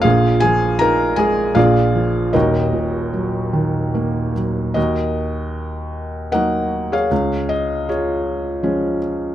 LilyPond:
<<
  \new Staff \with { instrumentName = "Felt piano" } { \time 3/4 \key ees \minor \tempo 4 = 78 << { f''8 aes''8 bes''8 aes''8 f''4 | ees''2~ ees''8 r8 | ees''2 ges''8. f''16~ | f''8 ees''8 des''4. r8 | } \\ { <f' aes'>8 aes'8 bes'8 aes'8 <f' aes' d''>4 | <ees' ges' bes'>2~ <ees' ges' bes'>8 r8 | <ges' bes'>2 <bes' ees''>8. <aes' des''>16~ | <aes' des''>4 <f' aes'>4. r8 | } >> }
  \new Staff \with { instrumentName = "Felt piano" } { \clef bass \time 3/4 \key ees \minor <bes,, bes,>8 f8 ees'8 aes8 <bes,, bes,>8 f8 | <ees,, ees,>8 bes,8 ges8 ees8 bes8 ges8 | ees,2 <ges bes ees'>4 | des,2 <f aes des'>4 | }
>>